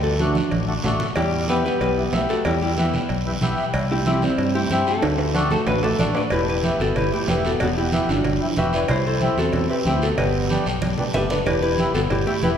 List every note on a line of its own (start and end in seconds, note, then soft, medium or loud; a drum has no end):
0.00 0.39 D2 loud
0.00 0.19 A4 medium
0.04 0.19 F#4 medium
0.19 0.36 A3 medium
0.19 0.37 D4 medium
0.19 0.50 D4 medium
0.19 0.50 F#4 medium
0.19 0.37 F#4 medium
0.19 high conga medium
0.19 short guiro medium
0.35 high conga medium
0.35 short guiro medium
0.51 0.78 A1 medium
0.51 cowbell medium
0.51 high conga medium
0.51 long guiro medium
0.67 0.73 A3 medium
0.67 0.73 D4 medium
0.67 0.73 F#4 medium
0.84 0.97 A1 medium
0.84 1.07 A3 medium
0.84 1.07 D4 medium
0.84 1.07 F#4 medium
0.84 low conga medium
0.84 low timbale medium
0.84 short guiro medium
1.00 low conga medium
1.00 short guiro medium
1.16 1.68 E2 medium
1.16 1.46 G3 medium
1.16 1.47 E4 medium
1.16 1.46 G4 medium
1.16 cowbell loud
1.16 long guiro medium
1.48 1.65 B3 medium
1.48 1.64 B3 medium
1.48 1.66 E4 medium
1.48 1.66 G4 medium
1.48 1.64 G4 medium
1.48 1.64 B4 medium
1.48 high conga medium
1.48 short guiro medium
1.65 1.80 B3 medium
1.65 1.80 G4 medium
1.65 1.80 B4 medium
1.65 short guiro medium
1.81 2.07 B1 loud
1.81 2.26 B3 medium
1.81 2.26 G4 medium
1.81 2.26 B4 loud
1.81 cowbell medium
1.81 long guiro medium
1.97 2.03 B3 medium
1.97 2.03 E4 medium
1.97 2.03 G4 medium
2.12 2.26 B1 medium
2.12 2.35 B3 medium
2.12 2.36 E4 medium
2.12 2.36 G4 medium
2.12 high conga medium
2.12 low timbale medium
2.12 short guiro medium
2.29 2.44 A3 medium
2.29 2.45 F#4 medium
2.29 2.44 A4 medium
2.29 short guiro medium
2.45 2.97 E2 medium
2.45 2.60 G3 medium
2.45 2.61 E4 medium
2.45 2.61 G4 medium
2.45 cowbell loud
2.45 long guiro medium
2.61 2.79 G3 medium
2.61 2.77 E4 medium
2.61 2.78 G4 medium
2.77 3.10 E3 medium
2.77 2.94 B3 medium
2.77 3.08 B3 medium
2.77 2.94 E4 medium
2.77 3.10 E4 medium
2.77 2.94 G4 medium
2.77 high conga medium
2.77 short guiro medium
2.93 low conga medium
2.93 short guiro medium
3.09 3.35 B1 medium
3.09 cowbell medium
3.09 long guiro medium
3.26 3.31 B3 medium
3.26 3.32 E4 medium
3.26 3.32 G4 medium
3.41 3.55 B1 medium
3.41 3.64 B3 medium
3.41 3.65 E4 medium
3.41 3.65 G4 loud
3.41 high conga medium
3.41 low conga medium
3.41 short guiro medium
3.58 short guiro medium
3.74 4.26 C2 loud
3.74 cowbell loud
3.74 long guiro medium
3.90 4.05 A3 medium
3.90 4.06 E4 medium
3.90 4.06 G4 medium
4.06 4.23 C4 medium
4.06 4.24 C4 medium
4.06 4.23 E4 medium
4.06 4.22 E4 medium
4.06 4.23 G4 medium
4.06 high conga medium
4.06 short guiro medium
4.22 4.55 G3 medium
4.22 4.53 C4 medium
4.22 4.54 E4 medium
4.22 high conga medium
4.22 short guiro medium
4.38 4.64 G2 loud
4.38 cowbell medium
4.38 long guiro medium
4.55 4.70 A3 medium
4.55 4.60 C4 medium
4.55 4.61 E4 medium
4.55 4.70 E4 medium
4.55 4.69 G4 medium
4.55 4.61 G4 medium
4.70 4.83 G2 medium
4.70 4.93 C4 medium
4.70 4.86 C4 medium
4.70 4.93 E4 medium
4.70 4.86 E4 medium
4.70 4.86 G4 medium
4.70 4.94 G4 medium
4.70 high conga medium
4.70 short guiro medium
4.87 5.47 A3 medium
4.87 5.48 F#4 medium
4.87 5.50 A4 medium
4.87 short guiro medium
5.02 5.55 D2 medium
5.02 cowbell loud
5.02 high timbale medium
5.02 long guiro medium
5.18 high timbale medium
5.34 5.52 D4 loud
5.34 5.52 F#4 medium
5.34 5.52 A4 loud
5.34 high conga medium
5.34 high timbale medium
5.34 short guiro medium
5.51 5.66 A3 medium
5.51 5.67 F#4 medium
5.51 5.66 A4 medium
5.51 high conga medium
5.51 low conga medium
5.51 short guiro medium
5.67 5.93 A1 medium
5.67 5.82 D4 medium
5.67 5.83 F#4 medium
5.67 5.82 B4 medium
5.67 cowbell medium
5.67 low timbale medium
5.67 long guiro medium
5.83 5.98 A3 medium
5.83 5.89 D4 medium
5.83 5.89 F#4 medium
5.83 5.99 F#4 medium
5.83 5.99 A4 loud
5.83 5.89 A4 medium
5.83 low timbale medium
5.99 6.12 A1 medium
5.99 6.22 D4 medium
5.99 6.15 D4 medium
5.99 6.22 F#4 medium
5.99 6.22 A4 medium
5.99 6.05 A4 medium
5.99 6.15 D5 medium
5.99 6.05 E5 medium
5.99 high conga medium
5.99 low conga medium
5.99 short guiro medium
6.15 6.23 D4 medium
6.15 6.21 B4 medium
6.15 6.21 D5 medium
6.15 low timbale medium
6.15 short guiro medium
6.30 6.70 E1 loud
6.30 6.47 E4 medium
6.30 6.47 G4 medium
6.30 6.47 B4 medium
6.30 cowbell loud
6.30 high conga soft
6.30 long guiro medium
6.48 6.78 E4 medium
6.48 6.78 G4 medium
6.48 6.78 B4 medium
6.63 6.80 B3 medium
6.63 6.81 E4 medium
6.63 6.81 G4 medium
6.63 high conga medium
6.63 short guiro medium
6.80 6.93 G1 medium
6.80 6.96 B3 medium
6.80 6.96 F#4 medium
6.80 6.95 A4 medium
6.80 short guiro medium
6.96 7.09 G1 medium
6.96 7.11 E4 medium
6.96 7.12 G4 medium
6.96 7.12 B4 medium
6.96 cowbell medium
6.96 high conga soft
6.96 low conga medium
6.96 long guiro medium
7.12 7.28 A3 medium
7.12 7.18 B3 medium
7.12 7.18 E4 medium
7.12 7.28 E4 medium
7.12 7.18 G4 medium
7.12 7.28 G4 medium
7.28 7.54 E1 medium
7.28 7.51 B3 medium
7.28 7.51 E4 medium
7.28 7.44 E4 medium
7.28 7.51 G4 medium
7.28 7.44 G4 medium
7.28 7.46 B4 medium
7.28 high conga medium
7.28 low conga medium
7.28 low timbale medium
7.28 short guiro medium
7.45 7.60 B3 medium
7.45 7.60 F#4 medium
7.45 7.60 A4 medium
7.45 short guiro medium
7.60 7.99 E1 medium
7.60 7.78 B3 medium
7.60 7.67 F#4 medium
7.60 7.67 A4 medium
7.60 cowbell loud
7.60 high conga soft
7.60 low conga medium
7.60 long guiro medium
7.78 8.09 B3 medium
7.78 8.07 E4 medium
7.78 8.09 G4 medium
7.92 8.10 B3 medium
7.92 8.10 E4 medium
7.92 8.10 G4 medium
7.92 high conga medium
7.92 short guiro medium
8.09 8.22 G1 medium
8.09 8.55 G3 medium
8.09 8.54 D4 medium
8.09 8.55 F#4 medium
8.09 short guiro medium
8.24 8.38 G1 loud
8.24 cowbell medium
8.24 high conga soft
8.24 low conga medium
8.24 long guiro medium
8.41 8.47 B3 medium
8.41 8.47 E4 medium
8.41 8.47 G4 medium
8.57 8.83 E1 medium
8.57 8.80 B3 medium
8.57 8.80 E4 medium
8.57 8.76 F#4 medium
8.57 8.80 G4 medium
8.57 8.73 B4 medium
8.57 8.75 E5 loud
8.57 high conga medium
8.57 low conga medium
8.57 short guiro medium
8.73 8.88 E4 medium
8.73 8.89 B4 medium
8.73 8.90 D5 medium
8.73 short guiro medium
8.88 9.28 C2 loud
8.88 9.04 E4 medium
8.88 9.05 G4 medium
8.88 9.05 C5 medium
8.88 cowbell loud
8.88 high conga soft
8.88 low conga medium
8.88 long guiro medium
9.06 9.36 E4 medium
9.06 9.36 A4 medium
9.06 9.36 C5 medium
9.21 9.38 C4 medium
9.21 9.38 E4 medium
9.21 9.39 G4 medium
9.21 high conga medium
9.21 short guiro medium
9.37 9.50 E2 medium
9.37 9.68 C4 medium
9.37 9.68 F#4 medium
9.37 9.68 A4 loud
9.37 short guiro medium
9.53 9.66 E2 loud
9.53 cowbell medium
9.53 high conga soft
9.53 low conga medium
9.53 long guiro medium
9.69 9.75 C4 medium
9.69 9.85 C4 medium
9.69 9.75 E4 medium
9.69 9.75 G4 medium
9.69 9.85 G4 medium
9.69 9.87 B4 medium
9.85 10.12 D2 medium
9.85 10.08 C4 medium
9.85 9.93 C4 medium
9.85 10.08 E4 medium
9.85 9.92 E4 medium
9.85 10.09 G4 medium
9.85 9.92 G4 medium
9.85 high conga medium
9.85 short guiro medium
10.02 10.17 B3 medium
10.02 10.18 F#4 medium
10.02 10.17 A4 medium
10.02 short guiro medium
10.18 10.57 G1 medium
10.18 10.63 B3 medium
10.18 10.63 G4 medium
10.18 10.63 B4 medium
10.18 cowbell loud
10.18 high conga soft
10.18 low conga medium
10.18 long guiro medium
10.50 10.67 B3 medium
10.50 10.67 D4 medium
10.50 10.67 G4 medium
10.50 high conga medium
10.50 short guiro medium
10.66 10.79 B1 medium
10.66 short guiro medium
10.82 10.95 B1 medium
10.82 cowbell medium
10.82 high conga medium
10.82 long guiro medium
10.98 11.04 B3 medium
10.98 11.04 D4 medium
10.98 11.05 G4 medium
10.98 low conga medium
11.14 11.40 F#1 medium
11.14 11.37 B3 medium
11.14 11.37 D4 medium
11.14 11.32 G4 medium
11.14 11.37 G4 medium
11.14 11.30 B4 medium
11.14 11.30 E5 loud
11.14 low conga medium
11.14 short guiro medium
11.30 11.46 D4 medium
11.30 11.45 B4 medium
11.30 11.47 D5 loud
11.30 low conga medium
11.30 short guiro medium
11.46 11.85 E1 loud
11.46 11.62 E4 medium
11.46 11.62 G4 medium
11.46 11.61 B4 medium
11.46 cowbell loud
11.46 high conga soft
11.46 low conga medium
11.46 long guiro medium
11.62 11.93 E4 medium
11.62 11.93 G4 medium
11.62 11.94 B4 loud
11.78 11.96 B3 medium
11.78 11.96 E4 medium
11.78 11.96 G4 medium
11.78 high conga medium
11.78 short guiro medium
11.94 12.08 G1 medium
11.94 12.10 B3 medium
11.94 12.01 F#4 medium
11.94 12.00 A4 medium
11.94 short guiro medium
12.10 12.24 G1 medium
12.10 12.25 E4 medium
12.10 12.26 G4 medium
12.10 12.27 B4 medium
12.10 cowbell medium
12.10 high conga soft
12.10 low conga medium
12.10 long guiro medium
12.26 12.41 A3 medium
12.26 12.33 B3 medium
12.26 12.33 E4 medium
12.26 12.43 E4 medium
12.26 12.44 G4 loud
12.26 12.33 G4 medium
12.43 12.58 E1 medium
12.43 12.58 B3 medium
12.43 12.58 E4 medium
12.43 12.58 G4 medium
12.43 12.50 G4 medium
12.43 12.48 B4 loud
12.43 high conga medium
12.43 short guiro medium